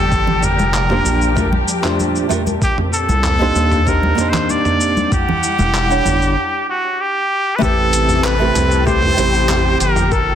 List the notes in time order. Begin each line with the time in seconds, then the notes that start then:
Already playing: G1 A#2 F3 G3 G4 A4 A5
0.12 kick, shaker
0.27 low conga
0.43 A#4, mid tom, shaker
0.59 F1, high conga, shaker
0.74 clap, shaker
0.89 A#3 D4 F4 G4 C5, mid tom
1.05 A#1, shaker
1.21 shaker
1.35 A3 D4 F4 G4 A#4, kick, mid tom, shaker
1.52 high conga
1.68 shaker
1.82 A3 D4 F4 G4 C5, clap, mid tom, shaker
1.99 high conga, shaker
2.16 shaker
2.29 A3 D4 F4 G4 A#4, mid tom, shaker
2.47 high conga, shaker
2.62 C4 G4, kick, shaker
2.78 mid tom
2.93 A4, shaker
3.09 C2, high conga, shaker
3.24 clap, mid tom, shaker
3.39 A#3 D4 D#4 G4 C5
3.56 D#2, high conga, shaker
3.71 mid tom, shaker
3.85 A#3 D4 D#4 G4 A#4 C5, kick, shaker
4.03 high conga
4.15 A#3 D4 D#4, mid tom, shaker
4.19 G4 C5
4.30 C5, low conga
4.34 clap, shaker
4.49 D5, high conga, shaker
4.65 mid tom, shaker
4.81 shaker
4.97 high conga, shaker
5.12 G3 E4 G4 F#5, kick, mid tom, shaker
5.29 low conga
5.43 shaker
5.59 E1, mid tom, high conga, shaker
5.75 clap, shaker
5.89 G3 D4 E4 C#5 F#5, shaker
6.05 G1, mid tom, high conga, shaker
6.22 shaker
6.70 F#4
7.01 G4
7.56 A3 C4 B4
7.61 A1 C3 E4 G4 A4 B4, kick, mid tom, shaker
7.93 closed hi-hat, shaker
8.09 mid tom, shaker
8.24 B4, clap, shaker
8.39 A3 C4 E4 G4 B4
8.55 C2, closed hi-hat, mid tom, shaker
8.71 shaker
8.85 A3 C4 E4 G4 B4 C5, kick, shaker
9.03 mid tom
9.16 A1 A3 C4 E4 G4 C5, closed hi-hat, shaker
9.34 shaker
9.49 G4, clap, mid tom, shaker
9.80 G1 A#2 F3 A#4, closed hi-hat, shaker
9.96 mid tom, shaker
10.12 A4 A#4, kick, shaker